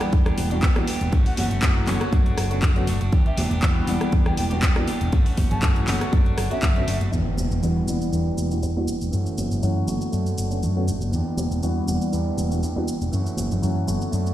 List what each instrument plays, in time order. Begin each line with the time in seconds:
Already playing: grand piano E3 G3 B3 D4 F#5
0.01 clean electric guitar B3 D4 G4, cross-stick, closed hi-hat, tambourine
0.12 fingered electric bass E2, kick, closed hi-hat, tambourine
0.26 clean electric guitar B3 D4 G4, cross-stick, closed hi-hat, tambourine
0.38 fingered electric bass E1, open hi-hat, tambourine, high conga
0.50 grand piano E3 G3 B3 D4 F#4, clean electric guitar B3 D4 G4, closed hi-hat, tambourine
0.62 fingered electric bass E2, clean electric guitar E3 B3 D4 G4, kick, clap, closed hi-hat, tambourine
0.75 grand piano E3 G3 B3 D4 F#4, cross-stick, closed hi-hat, tambourine, high conga
0.87 fingered electric bass E1, clean electric guitar E3 B3 D4 G4, open hi-hat, tambourine
1.01 fingered electric bass E1, closed hi-hat, tambourine
1.12 fingered electric bass F#2, clean electric guitar E3 A3 C#4 F#4, kick, closed hi-hat, tambourine
1.25 clean electric guitar A3 C#4 F#4, flute F#5, open hi-hat, tambourine
1.37 fingered electric bass F#1, clean electric guitar E3 A3 C#4 F#4, flute F#5, open hi-hat, tambourine, high conga
1.50 fingered electric bass F#1, clean electric guitar A3 C#4 F#4, closed hi-hat, tambourine
1.62 fingered electric bass F#2, grand piano E3 F#3 A3 C#4 F#4, clean electric guitar E3 A3 C#4 F#4, kick, clap, closed hi-hat, tambourine
1.75 tambourine
1.87 fingered electric bass F#1, grand piano D3 A3 B3 F#4 C#5, clean electric guitar E3 A3 C#4 F#4, clap, open hi-hat, tambourine, high conga
2.00 clean electric guitar A3 C#4 F#4, cross-stick, closed hi-hat, tambourine
2.12 fingered electric bass F#2, clean electric guitar A3 D4 F#4, kick, closed hi-hat, tambourine
2.26 clean electric guitar D4 F#4, closed hi-hat, tambourine
2.37 fingered electric bass F#1, cross-stick, open hi-hat, tambourine
2.51 grand piano D3 A3 B3 C#4 F#4, clean electric guitar D4 F#4, closed hi-hat, tambourine
2.62 fingered electric bass F#2, clean electric guitar A3 D4 F#4, kick, clap, closed hi-hat
2.76 grand piano D3 A3 B3 C#4 F#4, closed hi-hat, tambourine
2.87 fingered electric bass F#1, clean electric guitar A3 D4 F#4, open hi-hat, tambourine
3.01 fingered electric bass F#1, clean electric guitar D4 F#4, closed hi-hat, tambourine
3.12 fingered electric bass E2, clean electric guitar E3 B3 D4 G4, kick, closed hi-hat, tambourine
3.25 clean electric guitar B3 D4 G4, flute E5, closed hi-hat, tambourine
3.37 fingered electric bass E1, clean electric guitar E3 B3 D4 G4, open hi-hat, tambourine, high conga
3.50 fingered electric bass E1, clean electric guitar B3 D4 G4, closed hi-hat, tambourine
3.62 fingered electric bass E2, clean electric guitar E3 B3 D4 G4, grand piano E3 G3 B3 D4 F#4, kick, clap, closed hi-hat, tambourine
3.76 tambourine
3.87 fingered electric bass E1, clean electric guitar E3 B3 D4 G4, grand piano E3 G3 B3 D4 F#5, open hi-hat, tambourine, high conga
4.00 clean electric guitar B3 D4 G4, cross-stick, closed hi-hat, tambourine
4.12 fingered electric bass E2, kick, closed hi-hat, tambourine
4.25 clean electric guitar B3 D4 G4, flute G5, cross-stick, closed hi-hat, tambourine
4.37 fingered electric bass E1, flute G5, open hi-hat, tambourine, high conga
4.50 grand piano E3 G3 B3 D4 F#4, clean electric guitar B3 D4 G4, closed hi-hat, tambourine
4.62 fingered electric bass E2, clean electric guitar E3 B3 D4, kick, clap, closed hi-hat, tambourine
4.76 grand piano E3 G3 B3 D4 F#4, cross-stick, closed hi-hat, tambourine, high conga
4.87 fingered electric bass E1, clean electric guitar E3 B3 D4 G4, open hi-hat, tambourine
5.01 fingered electric bass E1, closed hi-hat, tambourine
5.12 fingered electric bass F#2, clean electric guitar E3 A3 C#4 F#4, kick, closed hi-hat, tambourine
5.25 clean electric guitar A3 C#4 F#4, open hi-hat, tambourine
5.37 fingered electric bass F#1, clean electric guitar E3 A3 C#4 F#4, kick, open hi-hat, tambourine, high conga
5.50 fingered electric bass F#1, clean electric guitar A3 C#4 F#4, flute A5, closed hi-hat, tambourine, low conga
5.62 fingered electric bass F#2, clean electric guitar E3 F#4, grand piano E3 F#3 A3 C#4 F#4, kick, clap, closed hi-hat, tambourine
5.76 closed hi-hat, tambourine
5.87 fingered electric bass F#1, grand piano D3 A3 B3 F#4 C#5, clean electric guitar E3 A3 C#4 F#4, clap, open hi-hat, tambourine, high conga
6.00 clean electric guitar A3 C#4 F#4, cross-stick, closed hi-hat, tambourine
6.12 fingered electric bass F#2, clean electric guitar A3 D4 F#4, kick, closed hi-hat, tambourine
6.25 clean electric guitar D4 F#4, closed hi-hat, tambourine
6.38 fingered electric bass F#1, cross-stick, open hi-hat, tambourine
6.51 grand piano D3 A3 B3 C#4 F#4, clean electric guitar D4 F#4, flute E5, closed hi-hat, tambourine
6.62 fingered electric bass F#2, clean electric guitar A3 D4 F#4, kick, clap, closed hi-hat
6.76 grand piano D3 A3 B3 C#4 F#4, closed hi-hat, tambourine
6.87 fingered electric bass F#1, clean electric guitar A3 D4 F#4, open hi-hat, tambourine
7.01 fingered electric bass F#1, closed hi-hat, tambourine, high conga
7.11 fingered electric bass E2, clean electric guitar E3 B3 D4, tambourine, impact, cabasa
7.15 clean electric guitar G4
7.26 tambourine
7.38 fingered electric bass E1, tambourine, high conga, cabasa
7.51 fingered electric bass E1, tambourine, cabasa
7.62 fingered electric bass E2, grand piano E3 G3 B3 D4 F#4, tambourine, cabasa
7.87 fingered electric bass E1, grand piano E3 G3 B3 D4 F#5, tambourine, high conga, cabasa
8.01 tambourine, cabasa
8.12 fingered electric bass E2, clean electric guitar E3 B3 D4 G4, tambourine, cabasa
8.38 fingered electric bass E1, tambourine, high conga, cabasa
8.51 grand piano E3 G3 B3 D4 F#4, tambourine, cabasa
8.63 fingered electric bass E2, cabasa
8.76 grand piano E3 G3 B3 D4 F#4, tambourine, high conga
8.88 fingered electric bass E1, tambourine, cabasa
9.01 fingered electric bass E1, tambourine, cabasa
9.11 fingered electric bass F#2, clean electric guitar E3 A3 C#4, tambourine, cabasa
9.16 clean electric guitar F#4
9.26 tambourine, cabasa
9.38 fingered electric bass F#1, tambourine, high conga, cabasa
9.51 fingered electric bass F#1, tambourine, cabasa
9.62 fingered electric bass F#2, grand piano E3 F#3 A3 C#4 F#4, cabasa
9.87 fingered electric bass F#1, grand piano D3 A3 B3 F#4 C#5, tambourine, high conga, cabasa
10.01 tambourine, cabasa
10.12 fingered electric bass F#2, clean electric guitar A3 D4 F#4, tambourine, cabasa
10.26 tambourine, cabasa
10.37 fingered electric bass F#1, tambourine, cabasa
10.50 grand piano D3 A3 B3 C#4 F#4, cabasa
10.62 fingered electric bass F#2, clean electric guitar A3 D4 F#4, cabasa
10.76 grand piano D3 A3 B3 C#4 F#4
10.88 fingered electric bass F#1, cabasa
11.01 fingered electric bass F#1, tambourine, high conga, cabasa
11.11 fingered electric bass E2, clean electric guitar E3 B3 D4, tambourine, cabasa
11.15 clean electric guitar G4
11.26 tambourine
11.37 fingered electric bass E1, tambourine, high conga, cabasa
11.51 fingered electric bass E1, tambourine, cabasa
11.62 fingered electric bass E2, grand piano E3 G3 B3 D4 F#4, tambourine, cabasa
11.76 tambourine
11.87 fingered electric bass E1, grand piano E3 G3 B3 D4 F#5, tambourine, high conga, cabasa
12.01 tambourine, cabasa
12.12 fingered electric bass E2, clean electric guitar E3 B3 D4 G4, tambourine, cabasa
12.37 fingered electric bass E1, tambourine, high conga, cabasa
12.50 grand piano E3 G3 B3 D4 F#4, tambourine, cabasa
12.62 fingered electric bass E2, clean electric guitar E3 B3 D4 G4, tambourine, cabasa
12.76 grand piano E3 G3 B3 D4 F#4, tambourine, high conga
12.87 fingered electric bass E1, tambourine, cabasa
13.00 fingered electric bass E1, tambourine, cabasa
13.12 fingered electric bass F#2, clean electric guitar E3 A3 C#4 F#4, tambourine, cabasa
13.26 tambourine, cabasa
13.37 fingered electric bass F#1, tambourine, high conga, cabasa
13.51 fingered electric bass F#1, tambourine, low conga, cabasa
13.62 fingered electric bass F#2, grand piano E3 F#3 A3 C#4 F#4, tambourine, cabasa
13.76 tambourine
13.86 fingered electric bass F#1, grand piano D3 A3 B3 F#4 C#5, tambourine, high conga, cabasa
14.01 tambourine, cabasa
14.11 fingered electric bass F#2, clean electric guitar A3 D4, cabasa
14.15 clean electric guitar F#4
14.26 cabasa